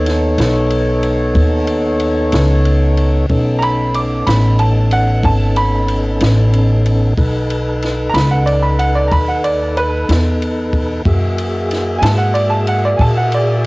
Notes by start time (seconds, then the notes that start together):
Already playing: D#2 B3 D#4 A4 C#5
0.06 snare, ride
0.38 B1, snare, ride
0.70 ride
1.03 ride
1.35 D#2, kick, ride
1.67 ride
1.99 ride
2.32 C#2, snare, ride
2.65 ride
2.97 ride
3.29 B1 B3 C#4 D#4 A4, kick, ride
3.58 A#5, ride
3.63 B5
3.94 D6, ride
4.26 A1 B5, snare, ride
4.59 A5, ride
4.91 F#5, ride
5.24 G#1 A5, kick, ride
5.56 B5, ride
5.88 ride
6.20 A1, snare, ride
6.53 ride
6.86 ride
7.18 B1 D#4 A4 B4, kick, ride
7.50 ride
7.82 snare, ride
8.10 A#5
8.14 C#2 B5, snare, ride
8.31 F#5
8.46 D5, ride
8.63 B5
8.79 F#5, ride
8.95 D5
9.08 D#2 A#5, kick, ride
9.12 B5
9.28 F#5
9.44 D5, ride
9.77 B4, ride
10.09 E2, snare, ride
10.42 ride
10.73 kick, ride
11.05 F#2 A#3 E4 F#4 G#4 E5, kick, ride
11.38 ride
11.71 snare, ride
11.99 G#2 G#5, ride
12.03 A5, snare
12.18 F#5
12.34 D5, ride
12.50 A5
12.67 F#5, ride
12.85 D5
12.97 A#2 G#5, kick, ride
13.01 A5
13.17 F#5
13.32 D5, ride